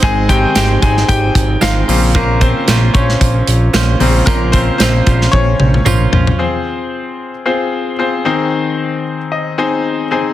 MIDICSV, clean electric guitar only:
0, 0, Header, 1, 2, 480
1, 0, Start_track
1, 0, Key_signature, -4, "major"
1, 0, Tempo, 530973
1, 27, Time_signature, 4, 2, 24, 8
1, 9341, End_track
2, 0, Start_track
2, 0, Title_t, "Clean electric guitar"
2, 0, Program_c, 0, 27
2, 22, Note_on_c, 0, 56, 90
2, 28, Note_on_c, 0, 63, 88
2, 32, Note_on_c, 0, 60, 92
2, 37, Note_on_c, 0, 72, 86
2, 250, Note_off_c, 0, 72, 0
2, 261, Note_off_c, 0, 60, 0
2, 261, Note_on_c, 0, 72, 63
2, 264, Note_off_c, 0, 56, 0
2, 267, Note_off_c, 0, 63, 0
2, 272, Note_on_c, 0, 60, 57
2, 282, Note_on_c, 0, 63, 54
2, 496, Note_off_c, 0, 63, 0
2, 499, Note_on_c, 0, 56, 57
2, 503, Note_off_c, 0, 60, 0
2, 503, Note_off_c, 0, 72, 0
2, 507, Note_on_c, 0, 63, 57
2, 514, Note_on_c, 0, 60, 65
2, 520, Note_on_c, 0, 72, 72
2, 729, Note_off_c, 0, 72, 0
2, 740, Note_off_c, 0, 60, 0
2, 740, Note_on_c, 0, 72, 54
2, 742, Note_off_c, 0, 56, 0
2, 746, Note_off_c, 0, 63, 0
2, 751, Note_on_c, 0, 60, 47
2, 760, Note_on_c, 0, 63, 45
2, 1455, Note_off_c, 0, 63, 0
2, 1456, Note_on_c, 0, 56, 65
2, 1466, Note_on_c, 0, 63, 77
2, 1468, Note_off_c, 0, 60, 0
2, 1472, Note_on_c, 0, 60, 70
2, 1476, Note_off_c, 0, 72, 0
2, 1479, Note_on_c, 0, 72, 82
2, 1688, Note_off_c, 0, 72, 0
2, 1698, Note_on_c, 0, 72, 59
2, 1700, Note_off_c, 0, 56, 0
2, 1705, Note_off_c, 0, 63, 0
2, 1707, Note_off_c, 0, 60, 0
2, 1711, Note_on_c, 0, 65, 50
2, 1720, Note_on_c, 0, 61, 44
2, 1938, Note_off_c, 0, 61, 0
2, 1939, Note_on_c, 0, 46, 98
2, 1941, Note_off_c, 0, 72, 0
2, 1942, Note_off_c, 0, 65, 0
2, 1946, Note_on_c, 0, 58, 105
2, 1949, Note_on_c, 0, 61, 87
2, 1953, Note_on_c, 0, 65, 95
2, 1955, Note_on_c, 0, 72, 106
2, 2167, Note_off_c, 0, 72, 0
2, 2178, Note_on_c, 0, 72, 57
2, 2180, Note_off_c, 0, 65, 0
2, 2181, Note_off_c, 0, 46, 0
2, 2184, Note_off_c, 0, 58, 0
2, 2186, Note_off_c, 0, 61, 0
2, 2191, Note_on_c, 0, 65, 53
2, 2200, Note_on_c, 0, 61, 52
2, 2416, Note_off_c, 0, 61, 0
2, 2419, Note_on_c, 0, 58, 57
2, 2420, Note_off_c, 0, 72, 0
2, 2424, Note_off_c, 0, 65, 0
2, 2427, Note_on_c, 0, 61, 64
2, 2434, Note_on_c, 0, 65, 69
2, 2441, Note_on_c, 0, 72, 64
2, 2648, Note_off_c, 0, 72, 0
2, 2659, Note_on_c, 0, 72, 61
2, 2660, Note_off_c, 0, 58, 0
2, 2661, Note_off_c, 0, 65, 0
2, 2664, Note_off_c, 0, 61, 0
2, 2672, Note_on_c, 0, 65, 52
2, 2681, Note_on_c, 0, 61, 48
2, 3374, Note_off_c, 0, 61, 0
2, 3377, Note_on_c, 0, 58, 75
2, 3385, Note_on_c, 0, 61, 74
2, 3388, Note_off_c, 0, 65, 0
2, 3392, Note_on_c, 0, 65, 75
2, 3395, Note_off_c, 0, 72, 0
2, 3398, Note_on_c, 0, 72, 80
2, 3606, Note_off_c, 0, 72, 0
2, 3617, Note_on_c, 0, 72, 57
2, 3619, Note_off_c, 0, 58, 0
2, 3619, Note_off_c, 0, 65, 0
2, 3623, Note_off_c, 0, 61, 0
2, 3630, Note_on_c, 0, 65, 46
2, 3639, Note_on_c, 0, 61, 48
2, 3856, Note_off_c, 0, 61, 0
2, 3857, Note_on_c, 0, 46, 86
2, 3858, Note_off_c, 0, 65, 0
2, 3859, Note_off_c, 0, 72, 0
2, 3862, Note_on_c, 0, 58, 81
2, 3867, Note_on_c, 0, 61, 83
2, 3869, Note_on_c, 0, 65, 85
2, 3873, Note_on_c, 0, 72, 105
2, 4081, Note_off_c, 0, 72, 0
2, 4092, Note_on_c, 0, 72, 61
2, 4094, Note_off_c, 0, 65, 0
2, 4098, Note_off_c, 0, 46, 0
2, 4101, Note_off_c, 0, 58, 0
2, 4103, Note_off_c, 0, 61, 0
2, 4105, Note_on_c, 0, 65, 56
2, 4114, Note_on_c, 0, 61, 44
2, 4332, Note_off_c, 0, 61, 0
2, 4334, Note_on_c, 0, 58, 60
2, 4336, Note_off_c, 0, 72, 0
2, 4338, Note_off_c, 0, 65, 0
2, 4343, Note_on_c, 0, 61, 56
2, 4349, Note_on_c, 0, 65, 67
2, 4355, Note_on_c, 0, 72, 64
2, 4566, Note_off_c, 0, 72, 0
2, 4577, Note_off_c, 0, 58, 0
2, 4577, Note_on_c, 0, 72, 55
2, 4578, Note_off_c, 0, 65, 0
2, 4581, Note_off_c, 0, 61, 0
2, 4589, Note_on_c, 0, 65, 47
2, 4598, Note_on_c, 0, 61, 44
2, 5288, Note_off_c, 0, 61, 0
2, 5292, Note_on_c, 0, 58, 70
2, 5299, Note_on_c, 0, 61, 66
2, 5303, Note_off_c, 0, 65, 0
2, 5307, Note_on_c, 0, 65, 75
2, 5310, Note_off_c, 0, 72, 0
2, 5314, Note_on_c, 0, 72, 78
2, 5525, Note_off_c, 0, 72, 0
2, 5536, Note_off_c, 0, 58, 0
2, 5536, Note_on_c, 0, 72, 53
2, 5537, Note_off_c, 0, 65, 0
2, 5539, Note_off_c, 0, 61, 0
2, 5548, Note_on_c, 0, 65, 49
2, 5558, Note_on_c, 0, 61, 50
2, 5778, Note_off_c, 0, 72, 0
2, 5784, Note_off_c, 0, 65, 0
2, 5788, Note_off_c, 0, 61, 0
2, 9341, End_track
0, 0, End_of_file